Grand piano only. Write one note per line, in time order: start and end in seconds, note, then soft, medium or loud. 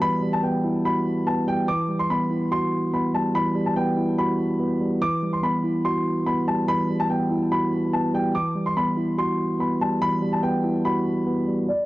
0.02 0.31 B5 loud
0.33 0.41 A5 medium
0.43 0.82 G5 medium
0.85 1.24 B5 medium
1.27 1.44 A5 medium
1.48 1.65 G5 medium
1.68 1.98 D6 medium
1.99 2.08 C6 medium
2.10 2.49 B5 medium
2.52 2.91 C6 medium
2.94 3.11 B5 medium
3.15 3.31 A5 medium
3.35 3.64 B5 loud
3.66 3.75 A5 medium
3.76 4.16 G5 medium
4.18 4.98 B5 medium
5.02 5.31 D6 loud
5.33 5.41 C6 medium
5.43 5.82 B5 medium
5.85 6.24 C6 medium
6.26 6.44 B5 medium
6.48 6.65 A5 medium
6.68 6.98 B5 loud
7.00 7.08 A5 medium
7.10 7.49 G5 medium
7.52 7.91 B5 medium
7.93 8.10 A5 medium
8.15 8.31 G5 medium
8.35 8.64 D6 medium
8.66 8.75 C6 medium
8.77 9.16 B5 medium
9.18 9.57 C6 medium
9.60 9.77 B5 medium
9.81 9.98 A5 medium
10.02 10.31 B5 loud
10.33 10.41 A5 medium
10.43 10.82 G5 medium
10.85 11.64 B5 medium
11.68 11.86 D5 loud